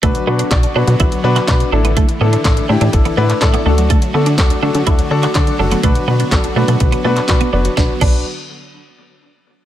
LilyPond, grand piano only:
\new Staff \with { instrumentName = "Grand piano" } { \time 4/4 \key b \minor \tempo 4 = 124 << { r1 | r2 \tuplet 3/2 { r8. fis''16 e''8 } a''4 | r1 | r1 |
r1 | } \\ { <d' fis' b'>8 <d' fis' b'>8 <d' fis' d''>8 <d' fis' b'>8 <d' fis' b'>8 <d' fis' b'>8 <d' fis' b'>8 <d' e' a'>8~ | <d' e' a'>8 <d' e' a'>8 <d' e' a'>8 <d' e' g'>8 <d' e' a'>8 <d' e' b'>8 <d' e' a'>8 <d' fis' a'>8~ | <d' fis' a'>8 <d' fis' a'>8 <d' fis' a'>8 <d' fis' a'>8 <d' fis' a'>8 <d' fis' a'>8 <d' fis' a'>8 <d' fis' a'>8 | <d' fis' b'>8 <d' fis' b'>8 <d' fis' a'>8 <d' fis' b'>8 <d' fis' b'>8 <d' fis' b'>8 <d' fis' b'>8 <d' fis' b'>8 |
<d' fis' b'>8 <d' fis' b'>8 r2. | } >> }